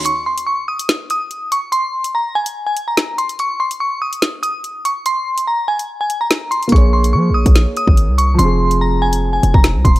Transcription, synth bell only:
\new Staff \with { instrumentName = "Synth bell" } { \time 4/4 \key bes \minor \tempo 4 = 144 des'''8 c'''8 des'''8 ees'''8 r8 ees'''4 des'''8 | c'''4 bes''8 aes''8. aes''8 bes''8. c'''8 | des'''8 c'''8 des'''8 ees'''8 r8 ees'''4 des'''8 | c'''4 bes''8 aes''8. aes''8 bes''8. c'''8 |
des'''8 c'''8 des'''8 ees'''8 r8 ees'''4 des'''8 | c'''4 bes''8 aes''8. aes''8 bes''8. c'''8 | }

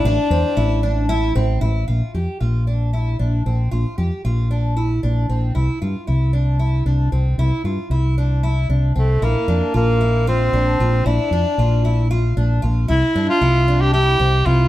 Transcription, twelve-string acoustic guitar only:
\new Staff \with { instrumentName = "Twelve-string acoustic guitar" } { \time 7/8 \key bes \lydian \tempo 4 = 114 d'8 c'8 e'8 d'8 e'8 c'8 e'8 | f'8 g'8 f'8 d'8 e'8 d'8 c'8 | f'8 g'8 f'8 d'8 e'8 d'8 c'8 | e'8 f'8 e'8 d'8 e'8 d'8 c'8 |
e'8 f'8 e'8 d'8 e'8 d'8 c'8 | e'8 d'8 f'8 e'8 f'8 d'8 f'8 | e'8 d'8 f'8 e'8 f'8 d'8 f'8 | e'8 d'8 e'8 d'8 e'8 c'8 e'8 | }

